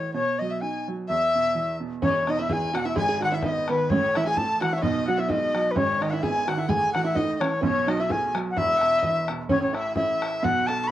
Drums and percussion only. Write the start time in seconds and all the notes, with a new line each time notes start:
2.03 bodhran
2.27 bodhran
2.50 bodhran
2.75 bodhran
2.96 bodhran
3.22 bodhran
3.42 bodhran
3.68 bodhran
3.90 bodhran
4.15 bodhran
4.37 bodhran
4.62 bodhran
4.83 bodhran
5.30 bodhran
5.55 bodhran
5.76 bodhran
6.02 bodhran
6.23 bodhran
6.48 bodhran
6.69 bodhran
6.95 bodhran
7.16 bodhran
7.41 bodhran
7.63 bodhran
7.88 bodhran
8.10 bodhran
8.35 bodhran
8.57 bodhran
8.81 bodhran
9.03 bodhran
9.28 bodhran
9.49 bodhran
9.74 bodhran
9.96 bodhran
10.22 bodhran
10.44 bodhran
10.69 bodhran